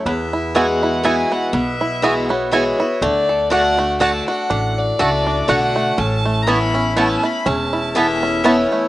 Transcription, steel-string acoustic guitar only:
0.06 1.00 E2 medium
0.55 1.02 E3 medium
0.55 1.02 G#3 medium
0.55 1.03 B3 medium
0.55 1.03 F#4 loud
1.03 1.51 E3 medium
1.03 1.51 G#3 medium
1.03 1.52 B3 loud
1.03 1.52 F#4 loud
1.53 2.48 B2 loud
2.02 2.29 E3 medium
2.02 2.29 G#3 medium
2.02 2.29 B3 medium
2.02 2.28 F#4 medium
2.29 2.52 B3 soft
2.29 2.51 F#4 medium
2.51 2.78 E3 medium
2.51 2.78 G#3 medium
2.51 2.79 B3 loud
2.51 2.79 F#4 medium
2.80 3.02 B3 soft
2.80 3.01 F#4 medium
3.02 3.49 D3 loud
3.50 3.77 D3 loud
3.50 3.77 A3 medium
3.50 3.77 D4 loud
3.50 3.76 F#4 loud
3.77 4.00 D4 medium
3.77 3.99 F#4 medium
4.00 4.26 D3 medium
4.00 4.27 A3 loud
4.00 4.27 D4 loud
4.00 4.27 F#4 medium
4.28 4.50 D4 medium
4.28 4.49 F#4 medium
4.51 5.45 A2 medium
4.99 5.46 A3 loud
4.99 5.47 D4 medium
4.99 5.47 F#4 medium
5.48 5.95 D3 medium
5.48 5.96 A3 medium
5.48 5.96 D4 medium
5.48 5.96 F#4 loud
5.98 6.92 A2 medium
6.47 6.73 E3 medium
6.47 6.73 B3 medium
6.47 6.74 C#4 loud
6.47 6.73 E4 loud
6.75 6.97 C#4 medium
6.75 6.96 E4 medium
6.97 7.23 E3 medium
6.97 7.23 B3 medium
6.97 7.23 C#4 loud
6.97 7.22 E4 medium
7.23 7.46 C#4 soft
7.23 7.45 E4 medium
7.46 8.41 E2 loud
7.95 8.42 E3 loud
7.95 8.43 B3 loud
7.95 8.43 C#4 medium
7.95 8.43 E4 loud
8.44 8.88 E3 medium
8.44 8.88 B3 loud
8.44 8.88 C#4 medium
8.44 8.88 E4 loud

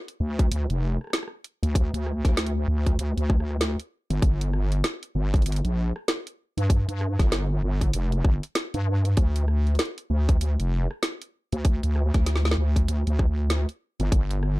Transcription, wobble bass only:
0.20 0.49 D2 medium
0.51 0.67 D2 loud
0.70 0.98 F1 loud
1.63 1.91 D2 medium
1.93 2.21 D2 loud
2.25 2.66 D2 loud
2.68 2.97 D2 loud
2.98 3.14 D2 medium
3.17 3.76 D2 loud
4.10 4.20 G1 loud
4.22 4.82 G1 loud
5.15 5.44 G1 loud
5.46 5.62 G1 loud
5.64 5.93 A#1 loud
6.57 6.85 G2 medium
6.88 7.16 G2 loud
7.19 7.61 G1 loud
7.62 7.92 G1 loud
7.94 8.23 F1 loud
8.25 8.40 G1 medium
8.74 9.15 G2 loud
9.17 9.77 D2 loud
10.10 10.39 D2 loud
10.41 10.57 D2 loud
10.60 10.88 F1 loud
11.53 11.80 D2 loud
11.83 12.11 D2 loud
12.14 12.55 D2 loud
12.57 12.86 D2 loud
12.88 13.04 D2 loud
13.07 13.66 D2 loud
14.00 14.10 G1 loud
14.12 14.60 G1 loud

